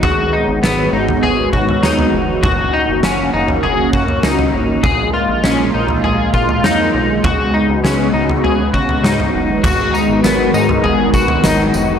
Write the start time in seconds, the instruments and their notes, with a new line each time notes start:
Already playing: analog synth pad D#3
0.03 analog synth bass G#1, analog synth pad G#3 B3 F#4, clean electric guitar F#4, vibraphone G#4, kick, floor tom
0.25 vibraphone B4
0.33 clean electric guitar D#4
0.44 vibraphone C#5
0.48 analog synth bass G#1
0.63 analog synth bass G#1, clean electric guitar B3, snare
0.92 analog synth bass G#1, clean electric guitar D#4
1.09 floor tom
1.23 analog synth bass G#1, clean electric guitar G#4, vibraphone B4, floor tom
1.52 analog synth bass G#2, clean electric guitar F#4, vibraphone C#5, kick
1.69 floor tom
1.83 analog synth bass D#2, clean electric guitar D#4, snare
1.99 floor tom
2.14 analog synth bass F1
2.43 analog synth bass F#1, analog synth pad A#3 C#4, clean electric guitar F#4, kick, floor tom
2.73 clean electric guitar D#4
2.89 analog synth bass F#1
3.03 analog synth bass F#1, clean electric guitar C#4, snare
3.33 analog synth bass F#1, clean electric guitar D#4
3.48 floor tom
3.63 analog synth bass F#1, clean electric guitar G#4, floor tom
3.93 analog synth bass F#2, clean electric guitar F#4, kick
4.08 floor tom
4.23 analog synth bass C#2, clean electric guitar D#4, snare
4.39 floor tom
4.54 analog synth bass G#1
4.83 analog synth bass A#1, analog synth pad G#3 A#3 F4, clean electric guitar G#4, kick, floor tom
5.13 clean electric guitar F4, vibraphone D#5
5.29 analog synth bass A#1
5.44 analog synth bass A#1, clean electric guitar C#4, snare
5.74 analog synth bass A#1, clean electric guitar D#4
5.88 floor tom
6.04 analog synth bass A#1, clean electric guitar G#4, floor tom
6.34 analog synth bass A#2, clean electric guitar F4, kick
6.49 floor tom
6.63 analog synth bass F2, clean electric guitar D#4, snare
6.94 analog synth bass B1
7.24 analog synth bass C#2, analog synth pad C#3 B3 F#4, clean electric guitar F#4, kick, floor tom
7.54 clean electric guitar D#4
7.69 analog synth bass C#2
7.84 analog synth bass C#2, clean electric guitar C#4, snare
8.13 analog synth bass C#2, clean electric guitar D#4
8.29 floor tom
8.44 analog synth bass C#2, clean electric guitar G#4, floor tom
8.74 analog synth bass C#3, clean electric guitar F#4, kick
8.89 floor tom
9.03 analog synth bass G#2, clean electric guitar D#4, snare
9.20 floor tom
9.34 analog synth bass F#1
9.63 analog synth bass G#1, analog synth pad D#3 G#3 B3 F#4, clean electric guitar F#4, kick, floor tom, crash, tambourine
9.93 clean electric guitar D#4, tambourine
10.09 analog synth bass G#1
10.24 analog synth bass G#1, clean electric guitar B3, vibraphone A#4, snare, tambourine
10.54 analog synth bass G#2, clean electric guitar D#4, tambourine
10.69 floor tom
10.84 analog synth bass G#1, clean electric guitar G#4, floor tom
11.14 analog synth bass B1, clean electric guitar F#4, kick, tambourine
11.28 floor tom
11.44 analog synth bass G#1, clean electric guitar D#4, snare, tambourine
11.74 analog synth bass F1, tambourine